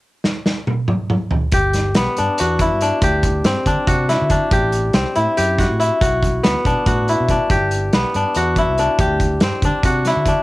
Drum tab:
HH |-------|xxxxxxx|xxxxxxx|xxxxxxx|
SD |-oo----|-oo----|--o--o-|--o--o-|
T1 |---o---|-------|-------|-------|
T2 |----oo-|-------|-------|-------|
FT |------o|-------|-------|-------|
BD |-------|o----o-|oo-oo-o|o----o-|

HH |xxxxxxx|xxxxxxx|xxxxxxx|
SD |--o----|--o----|--o--o-|
T1 |-------|-------|-------|
T2 |-------|-------|-------|
FT |-------|-------|-------|
BD |oo-oo-o|o----o-|oo-oo-o|